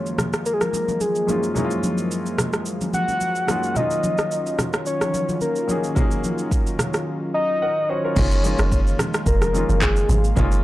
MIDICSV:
0, 0, Header, 1, 6, 480
1, 0, Start_track
1, 0, Tempo, 550459
1, 1359, Time_signature, 4, 2, 24, 8
1, 9277, End_track
2, 0, Start_track
2, 0, Title_t, "Soft synth lead"
2, 0, Program_c, 0, 80
2, 0, Note_on_c, 0, 73, 105
2, 161, Note_off_c, 0, 73, 0
2, 400, Note_on_c, 0, 70, 107
2, 465, Note_on_c, 0, 68, 92
2, 478, Note_off_c, 0, 70, 0
2, 533, Note_on_c, 0, 70, 105
2, 546, Note_off_c, 0, 68, 0
2, 880, Note_on_c, 0, 68, 91
2, 893, Note_off_c, 0, 70, 0
2, 1252, Note_off_c, 0, 68, 0
2, 2563, Note_on_c, 0, 78, 120
2, 3282, Note_on_c, 0, 75, 98
2, 3295, Note_off_c, 0, 78, 0
2, 4001, Note_off_c, 0, 75, 0
2, 4241, Note_on_c, 0, 73, 114
2, 4687, Note_off_c, 0, 73, 0
2, 4721, Note_on_c, 0, 70, 89
2, 5066, Note_off_c, 0, 70, 0
2, 6401, Note_on_c, 0, 75, 115
2, 6883, Note_on_c, 0, 73, 110
2, 6896, Note_off_c, 0, 75, 0
2, 7841, Note_off_c, 0, 73, 0
2, 8083, Note_on_c, 0, 70, 116
2, 8564, Note_on_c, 0, 68, 98
2, 8577, Note_off_c, 0, 70, 0
2, 8934, Note_off_c, 0, 68, 0
2, 9277, End_track
3, 0, Start_track
3, 0, Title_t, "Grand piano"
3, 0, Program_c, 1, 0
3, 0, Control_c, 1, 64, 127
3, 0, Note_on_c, 1, 42, 70
3, 0, Note_on_c, 1, 56, 67
3, 0, Note_on_c, 1, 58, 64
3, 0, Note_on_c, 1, 61, 65
3, 0, Note_on_c, 1, 63, 64
3, 0, Note_on_c, 1, 65, 76
3, 207, Note_off_c, 1, 42, 0
3, 210, Note_off_c, 1, 56, 0
3, 217, Note_off_c, 1, 61, 0
3, 220, Note_off_c, 1, 63, 0
3, 223, Note_off_c, 1, 65, 0
3, 242, Note_off_c, 1, 58, 0
3, 1108, Note_on_c, 1, 42, 70
3, 1114, Note_on_c, 1, 56, 64
3, 1121, Note_on_c, 1, 58, 63
3, 1127, Note_on_c, 1, 61, 61
3, 1134, Note_on_c, 1, 63, 64
3, 1140, Note_on_c, 1, 65, 77
3, 1310, Note_off_c, 1, 42, 0
3, 1314, Note_off_c, 1, 56, 0
3, 1317, Note_off_c, 1, 58, 0
3, 1320, Note_off_c, 1, 61, 0
3, 1324, Note_off_c, 1, 63, 0
3, 1327, Note_off_c, 1, 65, 0
3, 1346, Note_on_c, 1, 42, 87
3, 1352, Note_on_c, 1, 56, 79
3, 1359, Note_on_c, 1, 58, 80
3, 1366, Note_on_c, 1, 61, 77
3, 1372, Note_on_c, 1, 63, 80
3, 1378, Note_on_c, 1, 64, 71
3, 1431, Note_off_c, 1, 64, 0
3, 1435, Note_on_c, 1, 65, 90
3, 2126, Note_off_c, 1, 42, 0
3, 2129, Note_off_c, 1, 56, 0
3, 2132, Note_off_c, 1, 58, 0
3, 2135, Note_off_c, 1, 61, 0
3, 2138, Note_off_c, 1, 63, 0
3, 2170, Note_off_c, 1, 65, 0
3, 3026, Note_on_c, 1, 42, 70
3, 3032, Note_on_c, 1, 56, 63
3, 3039, Note_on_c, 1, 58, 62
3, 3045, Note_on_c, 1, 61, 65
3, 3051, Note_on_c, 1, 63, 62
3, 3058, Note_on_c, 1, 65, 74
3, 3230, Note_off_c, 1, 42, 0
3, 3233, Note_off_c, 1, 56, 0
3, 3236, Note_off_c, 1, 58, 0
3, 3239, Note_off_c, 1, 61, 0
3, 3242, Note_off_c, 1, 63, 0
3, 3246, Note_off_c, 1, 65, 0
3, 3265, Note_on_c, 1, 54, 72
3, 3274, Note_on_c, 1, 58, 65
3, 3283, Note_on_c, 1, 61, 65
3, 3290, Control_c, 1, 64, 0
3, 3290, Note_on_c, 1, 63, 66
3, 3298, Note_on_c, 1, 65, 77
3, 3446, Control_c, 1, 64, 127
3, 4045, Note_off_c, 1, 54, 0
3, 4050, Note_off_c, 1, 58, 0
3, 4054, Note_off_c, 1, 61, 0
3, 4058, Note_off_c, 1, 63, 0
3, 4062, Note_off_c, 1, 65, 0
3, 4948, Note_on_c, 1, 54, 69
3, 4955, Note_on_c, 1, 58, 63
3, 4963, Note_on_c, 1, 61, 64
3, 4972, Note_on_c, 1, 63, 64
3, 4980, Note_on_c, 1, 68, 80
3, 5151, Note_off_c, 1, 54, 0
3, 5154, Note_off_c, 1, 58, 0
3, 5158, Note_off_c, 1, 61, 0
3, 5163, Note_off_c, 1, 63, 0
3, 5167, Note_off_c, 1, 68, 0
3, 5189, Note_on_c, 1, 54, 85
3, 5197, Note_on_c, 1, 58, 80
3, 5206, Note_on_c, 1, 61, 76
3, 5214, Note_on_c, 1, 63, 79
3, 5221, Note_on_c, 1, 68, 93
3, 5967, Note_off_c, 1, 54, 0
3, 5971, Note_off_c, 1, 58, 0
3, 5975, Note_off_c, 1, 61, 0
3, 5979, Note_off_c, 1, 63, 0
3, 5983, Note_off_c, 1, 68, 0
3, 6404, Note_on_c, 1, 82, 69
3, 6625, Note_off_c, 1, 82, 0
3, 6645, Note_on_c, 1, 75, 65
3, 6645, Note_on_c, 1, 78, 75
3, 6651, Note_on_c, 1, 70, 57
3, 6866, Note_off_c, 1, 78, 0
3, 6870, Note_off_c, 1, 75, 0
3, 6874, Note_off_c, 1, 70, 0
3, 6885, Note_on_c, 1, 72, 67
3, 6885, Note_on_c, 1, 75, 69
3, 6889, Note_on_c, 1, 66, 59
3, 7008, Note_off_c, 1, 72, 0
3, 7010, Note_off_c, 1, 66, 0
3, 7016, Note_on_c, 1, 70, 67
3, 7020, Note_on_c, 1, 65, 60
3, 7106, Note_off_c, 1, 75, 0
3, 7107, Note_on_c, 1, 56, 74
3, 7115, Note_on_c, 1, 58, 69
3, 7123, Note_on_c, 1, 61, 66
3, 7126, Note_off_c, 1, 65, 0
3, 7130, Control_c, 1, 64, 0
3, 7131, Note_on_c, 1, 63, 67
3, 7139, Note_on_c, 1, 65, 82
3, 7242, Note_off_c, 1, 70, 0
3, 7281, Control_c, 1, 64, 127
3, 7310, Note_off_c, 1, 56, 0
3, 7314, Note_off_c, 1, 58, 0
3, 7318, Note_off_c, 1, 61, 0
3, 7322, Note_off_c, 1, 63, 0
3, 7326, Note_off_c, 1, 65, 0
3, 7348, Note_on_c, 1, 56, 75
3, 7355, Note_on_c, 1, 58, 66
3, 7364, Note_on_c, 1, 61, 72
3, 7372, Note_on_c, 1, 63, 67
3, 7380, Note_on_c, 1, 65, 81
3, 8127, Note_off_c, 1, 56, 0
3, 8130, Note_off_c, 1, 58, 0
3, 8135, Note_off_c, 1, 61, 0
3, 8138, Note_off_c, 1, 63, 0
3, 8143, Note_off_c, 1, 65, 0
3, 8310, Note_on_c, 1, 56, 69
3, 8317, Note_on_c, 1, 58, 62
3, 8326, Note_on_c, 1, 61, 62
3, 8333, Note_on_c, 1, 63, 60
3, 8341, Note_on_c, 1, 65, 74
3, 8900, Note_off_c, 1, 56, 0
3, 8904, Note_off_c, 1, 58, 0
3, 8908, Note_off_c, 1, 61, 0
3, 8912, Note_off_c, 1, 63, 0
3, 8916, Note_off_c, 1, 65, 0
3, 9030, Note_on_c, 1, 56, 88
3, 9038, Note_on_c, 1, 58, 85
3, 9045, Note_on_c, 1, 61, 80
3, 9053, Note_on_c, 1, 63, 84
3, 9061, Note_on_c, 1, 65, 95
3, 9232, Note_off_c, 1, 56, 0
3, 9236, Note_off_c, 1, 58, 0
3, 9239, Note_off_c, 1, 61, 0
3, 9243, Note_off_c, 1, 63, 0
3, 9247, Note_off_c, 1, 65, 0
3, 9277, End_track
4, 0, Start_track
4, 0, Title_t, "Analog synth pad"
4, 0, Program_c, 2, 89
4, 0, Note_on_c, 2, 51, 83
4, 0, Note_on_c, 2, 53, 92
4, 0, Note_on_c, 2, 54, 73
4, 0, Note_on_c, 2, 56, 78
4, 0, Note_on_c, 2, 58, 75
4, 3244, Note_off_c, 2, 51, 0
4, 3245, Note_off_c, 2, 53, 0
4, 3245, Note_off_c, 2, 56, 0
4, 3245, Note_off_c, 2, 58, 0
4, 3280, Note_on_c, 2, 61, 73
4, 3281, Note_on_c, 2, 65, 89
4, 3282, Note_on_c, 2, 51, 77
4, 7085, Note_off_c, 2, 61, 0
4, 7086, Note_off_c, 2, 51, 0
4, 7086, Note_off_c, 2, 54, 0
4, 7086, Note_off_c, 2, 65, 0
4, 7117, Note_on_c, 2, 56, 76
4, 7119, Note_on_c, 2, 58, 76
4, 7120, Note_on_c, 2, 51, 83
4, 7120, Note_on_c, 2, 77, 88
4, 9277, Note_off_c, 2, 51, 0
4, 9277, Note_off_c, 2, 56, 0
4, 9277, Note_off_c, 2, 58, 0
4, 9277, Note_off_c, 2, 77, 0
4, 9277, End_track
5, 0, Start_track
5, 0, Title_t, "Log drum bass"
5, 0, Program_c, 3, 39
5, 7120, Note_on_c, 3, 30, 106
5, 7452, Note_off_c, 3, 30, 0
5, 7490, Note_on_c, 3, 30, 96
5, 7802, Note_off_c, 3, 30, 0
5, 8078, Note_on_c, 3, 29, 99
5, 8411, Note_off_c, 3, 29, 0
5, 8451, Note_on_c, 3, 30, 93
5, 8762, Note_off_c, 3, 30, 0
5, 8799, Note_on_c, 3, 32, 104
5, 9014, Note_off_c, 3, 32, 0
5, 9041, Note_on_c, 3, 30, 109
5, 9277, Note_off_c, 3, 30, 0
5, 9277, End_track
6, 0, Start_track
6, 0, Title_t, "Drums"
6, 54, Note_on_c, 9, 82, 45
6, 142, Note_off_c, 9, 82, 0
6, 158, Note_on_c, 9, 63, 60
6, 158, Note_on_c, 9, 64, 62
6, 161, Note_on_c, 9, 37, 94
6, 165, Note_on_c, 9, 82, 88
6, 245, Note_off_c, 9, 63, 0
6, 245, Note_off_c, 9, 64, 0
6, 248, Note_off_c, 9, 37, 0
6, 252, Note_off_c, 9, 82, 0
6, 289, Note_on_c, 9, 82, 55
6, 293, Note_on_c, 9, 37, 92
6, 377, Note_off_c, 9, 82, 0
6, 380, Note_off_c, 9, 37, 0
6, 399, Note_on_c, 9, 82, 80
6, 487, Note_off_c, 9, 82, 0
6, 532, Note_on_c, 9, 37, 86
6, 532, Note_on_c, 9, 63, 63
6, 533, Note_on_c, 9, 82, 55
6, 619, Note_off_c, 9, 37, 0
6, 619, Note_off_c, 9, 63, 0
6, 620, Note_off_c, 9, 82, 0
6, 639, Note_on_c, 9, 63, 71
6, 645, Note_on_c, 9, 82, 85
6, 726, Note_off_c, 9, 63, 0
6, 732, Note_off_c, 9, 82, 0
6, 771, Note_on_c, 9, 63, 69
6, 773, Note_on_c, 9, 82, 49
6, 858, Note_off_c, 9, 63, 0
6, 860, Note_off_c, 9, 82, 0
6, 878, Note_on_c, 9, 63, 47
6, 878, Note_on_c, 9, 82, 70
6, 965, Note_off_c, 9, 82, 0
6, 966, Note_off_c, 9, 63, 0
6, 1006, Note_on_c, 9, 82, 51
6, 1093, Note_off_c, 9, 82, 0
6, 1119, Note_on_c, 9, 63, 71
6, 1122, Note_on_c, 9, 82, 94
6, 1206, Note_off_c, 9, 63, 0
6, 1209, Note_off_c, 9, 82, 0
6, 1250, Note_on_c, 9, 82, 52
6, 1337, Note_off_c, 9, 82, 0
6, 1358, Note_on_c, 9, 64, 74
6, 1359, Note_on_c, 9, 82, 67
6, 1445, Note_off_c, 9, 64, 0
6, 1447, Note_off_c, 9, 82, 0
6, 1489, Note_on_c, 9, 82, 56
6, 1576, Note_off_c, 9, 82, 0
6, 1598, Note_on_c, 9, 63, 69
6, 1600, Note_on_c, 9, 82, 80
6, 1686, Note_off_c, 9, 63, 0
6, 1687, Note_off_c, 9, 82, 0
6, 1725, Note_on_c, 9, 82, 51
6, 1812, Note_off_c, 9, 82, 0
6, 1842, Note_on_c, 9, 82, 69
6, 1930, Note_off_c, 9, 82, 0
6, 1972, Note_on_c, 9, 82, 44
6, 2059, Note_off_c, 9, 82, 0
6, 2078, Note_on_c, 9, 63, 64
6, 2078, Note_on_c, 9, 64, 64
6, 2079, Note_on_c, 9, 37, 96
6, 2083, Note_on_c, 9, 82, 89
6, 2165, Note_off_c, 9, 63, 0
6, 2165, Note_off_c, 9, 64, 0
6, 2166, Note_off_c, 9, 37, 0
6, 2170, Note_off_c, 9, 82, 0
6, 2207, Note_on_c, 9, 82, 56
6, 2211, Note_on_c, 9, 37, 94
6, 2294, Note_off_c, 9, 82, 0
6, 2298, Note_off_c, 9, 37, 0
6, 2317, Note_on_c, 9, 82, 77
6, 2404, Note_off_c, 9, 82, 0
6, 2451, Note_on_c, 9, 82, 57
6, 2452, Note_on_c, 9, 63, 64
6, 2538, Note_off_c, 9, 82, 0
6, 2540, Note_off_c, 9, 63, 0
6, 2559, Note_on_c, 9, 63, 72
6, 2562, Note_on_c, 9, 82, 81
6, 2646, Note_off_c, 9, 63, 0
6, 2649, Note_off_c, 9, 82, 0
6, 2690, Note_on_c, 9, 82, 48
6, 2691, Note_on_c, 9, 63, 67
6, 2777, Note_off_c, 9, 82, 0
6, 2778, Note_off_c, 9, 63, 0
6, 2796, Note_on_c, 9, 82, 71
6, 2799, Note_on_c, 9, 63, 47
6, 2884, Note_off_c, 9, 82, 0
6, 2886, Note_off_c, 9, 63, 0
6, 2925, Note_on_c, 9, 82, 49
6, 3012, Note_off_c, 9, 82, 0
6, 3037, Note_on_c, 9, 37, 90
6, 3039, Note_on_c, 9, 82, 88
6, 3040, Note_on_c, 9, 63, 71
6, 3124, Note_off_c, 9, 37, 0
6, 3127, Note_off_c, 9, 63, 0
6, 3127, Note_off_c, 9, 82, 0
6, 3169, Note_on_c, 9, 82, 51
6, 3256, Note_off_c, 9, 82, 0
6, 3278, Note_on_c, 9, 82, 69
6, 3281, Note_on_c, 9, 64, 76
6, 3365, Note_off_c, 9, 82, 0
6, 3368, Note_off_c, 9, 64, 0
6, 3407, Note_on_c, 9, 82, 56
6, 3494, Note_off_c, 9, 82, 0
6, 3520, Note_on_c, 9, 63, 70
6, 3520, Note_on_c, 9, 82, 81
6, 3607, Note_off_c, 9, 82, 0
6, 3608, Note_off_c, 9, 63, 0
6, 3644, Note_on_c, 9, 82, 48
6, 3651, Note_on_c, 9, 37, 95
6, 3731, Note_off_c, 9, 82, 0
6, 3738, Note_off_c, 9, 37, 0
6, 3762, Note_on_c, 9, 82, 72
6, 3849, Note_off_c, 9, 82, 0
6, 3893, Note_on_c, 9, 82, 47
6, 3980, Note_off_c, 9, 82, 0
6, 3999, Note_on_c, 9, 37, 90
6, 3999, Note_on_c, 9, 63, 62
6, 3999, Note_on_c, 9, 64, 64
6, 4002, Note_on_c, 9, 82, 88
6, 4086, Note_off_c, 9, 37, 0
6, 4087, Note_off_c, 9, 63, 0
6, 4087, Note_off_c, 9, 64, 0
6, 4090, Note_off_c, 9, 82, 0
6, 4127, Note_on_c, 9, 82, 57
6, 4131, Note_on_c, 9, 37, 95
6, 4214, Note_off_c, 9, 82, 0
6, 4218, Note_off_c, 9, 37, 0
6, 4238, Note_on_c, 9, 82, 77
6, 4325, Note_off_c, 9, 82, 0
6, 4371, Note_on_c, 9, 37, 87
6, 4372, Note_on_c, 9, 82, 54
6, 4374, Note_on_c, 9, 63, 63
6, 4458, Note_off_c, 9, 37, 0
6, 4459, Note_off_c, 9, 82, 0
6, 4461, Note_off_c, 9, 63, 0
6, 4481, Note_on_c, 9, 63, 73
6, 4484, Note_on_c, 9, 82, 77
6, 4568, Note_off_c, 9, 63, 0
6, 4571, Note_off_c, 9, 82, 0
6, 4612, Note_on_c, 9, 82, 49
6, 4613, Note_on_c, 9, 63, 70
6, 4699, Note_off_c, 9, 82, 0
6, 4701, Note_off_c, 9, 63, 0
6, 4718, Note_on_c, 9, 82, 68
6, 4720, Note_on_c, 9, 63, 48
6, 4805, Note_off_c, 9, 82, 0
6, 4807, Note_off_c, 9, 63, 0
6, 4846, Note_on_c, 9, 82, 49
6, 4934, Note_off_c, 9, 82, 0
6, 4960, Note_on_c, 9, 63, 72
6, 4962, Note_on_c, 9, 82, 87
6, 5047, Note_off_c, 9, 63, 0
6, 5049, Note_off_c, 9, 82, 0
6, 5091, Note_on_c, 9, 82, 51
6, 5178, Note_off_c, 9, 82, 0
6, 5200, Note_on_c, 9, 36, 113
6, 5201, Note_on_c, 9, 82, 70
6, 5202, Note_on_c, 9, 64, 75
6, 5287, Note_off_c, 9, 36, 0
6, 5288, Note_off_c, 9, 82, 0
6, 5289, Note_off_c, 9, 64, 0
6, 5329, Note_on_c, 9, 82, 52
6, 5416, Note_off_c, 9, 82, 0
6, 5441, Note_on_c, 9, 63, 72
6, 5441, Note_on_c, 9, 82, 84
6, 5528, Note_off_c, 9, 63, 0
6, 5528, Note_off_c, 9, 82, 0
6, 5566, Note_on_c, 9, 82, 50
6, 5654, Note_off_c, 9, 82, 0
6, 5681, Note_on_c, 9, 36, 89
6, 5683, Note_on_c, 9, 82, 72
6, 5768, Note_off_c, 9, 36, 0
6, 5771, Note_off_c, 9, 82, 0
6, 5814, Note_on_c, 9, 82, 48
6, 5901, Note_off_c, 9, 82, 0
6, 5919, Note_on_c, 9, 63, 63
6, 5919, Note_on_c, 9, 64, 66
6, 5922, Note_on_c, 9, 37, 97
6, 5925, Note_on_c, 9, 82, 93
6, 6007, Note_off_c, 9, 63, 0
6, 6007, Note_off_c, 9, 64, 0
6, 6009, Note_off_c, 9, 37, 0
6, 6012, Note_off_c, 9, 82, 0
6, 6049, Note_on_c, 9, 82, 58
6, 6053, Note_on_c, 9, 37, 94
6, 6137, Note_off_c, 9, 82, 0
6, 6140, Note_off_c, 9, 37, 0
6, 7119, Note_on_c, 9, 82, 72
6, 7120, Note_on_c, 9, 36, 123
6, 7120, Note_on_c, 9, 49, 95
6, 7122, Note_on_c, 9, 64, 81
6, 7206, Note_off_c, 9, 82, 0
6, 7207, Note_off_c, 9, 36, 0
6, 7207, Note_off_c, 9, 49, 0
6, 7209, Note_off_c, 9, 64, 0
6, 7250, Note_on_c, 9, 82, 56
6, 7337, Note_off_c, 9, 82, 0
6, 7362, Note_on_c, 9, 63, 72
6, 7362, Note_on_c, 9, 82, 84
6, 7449, Note_off_c, 9, 63, 0
6, 7449, Note_off_c, 9, 82, 0
6, 7486, Note_on_c, 9, 82, 52
6, 7493, Note_on_c, 9, 37, 100
6, 7573, Note_off_c, 9, 82, 0
6, 7580, Note_off_c, 9, 37, 0
6, 7601, Note_on_c, 9, 36, 92
6, 7603, Note_on_c, 9, 82, 73
6, 7688, Note_off_c, 9, 36, 0
6, 7691, Note_off_c, 9, 82, 0
6, 7735, Note_on_c, 9, 82, 49
6, 7823, Note_off_c, 9, 82, 0
6, 7840, Note_on_c, 9, 63, 63
6, 7840, Note_on_c, 9, 64, 65
6, 7841, Note_on_c, 9, 37, 98
6, 7845, Note_on_c, 9, 82, 89
6, 7927, Note_off_c, 9, 63, 0
6, 7927, Note_off_c, 9, 64, 0
6, 7928, Note_off_c, 9, 37, 0
6, 7932, Note_off_c, 9, 82, 0
6, 7969, Note_on_c, 9, 82, 59
6, 7973, Note_on_c, 9, 37, 97
6, 8056, Note_off_c, 9, 82, 0
6, 8060, Note_off_c, 9, 37, 0
6, 8078, Note_on_c, 9, 36, 101
6, 8078, Note_on_c, 9, 82, 84
6, 8165, Note_off_c, 9, 36, 0
6, 8166, Note_off_c, 9, 82, 0
6, 8212, Note_on_c, 9, 37, 92
6, 8213, Note_on_c, 9, 82, 61
6, 8214, Note_on_c, 9, 63, 65
6, 8299, Note_off_c, 9, 37, 0
6, 8300, Note_off_c, 9, 82, 0
6, 8301, Note_off_c, 9, 63, 0
6, 8321, Note_on_c, 9, 63, 78
6, 8326, Note_on_c, 9, 82, 84
6, 8409, Note_off_c, 9, 63, 0
6, 8414, Note_off_c, 9, 82, 0
6, 8454, Note_on_c, 9, 63, 69
6, 8454, Note_on_c, 9, 82, 50
6, 8541, Note_off_c, 9, 63, 0
6, 8541, Note_off_c, 9, 82, 0
6, 8559, Note_on_c, 9, 82, 69
6, 8561, Note_on_c, 9, 39, 85
6, 8562, Note_on_c, 9, 36, 93
6, 8646, Note_off_c, 9, 82, 0
6, 8648, Note_off_c, 9, 39, 0
6, 8649, Note_off_c, 9, 36, 0
6, 8689, Note_on_c, 9, 82, 53
6, 8776, Note_off_c, 9, 82, 0
6, 8802, Note_on_c, 9, 63, 78
6, 8802, Note_on_c, 9, 64, 80
6, 8802, Note_on_c, 9, 82, 93
6, 8890, Note_off_c, 9, 63, 0
6, 8890, Note_off_c, 9, 64, 0
6, 8890, Note_off_c, 9, 82, 0
6, 8932, Note_on_c, 9, 82, 55
6, 9019, Note_off_c, 9, 82, 0
6, 9041, Note_on_c, 9, 36, 118
6, 9041, Note_on_c, 9, 82, 73
6, 9043, Note_on_c, 9, 64, 79
6, 9128, Note_off_c, 9, 36, 0
6, 9128, Note_off_c, 9, 82, 0
6, 9131, Note_off_c, 9, 64, 0
6, 9171, Note_on_c, 9, 82, 59
6, 9258, Note_off_c, 9, 82, 0
6, 9277, End_track
0, 0, End_of_file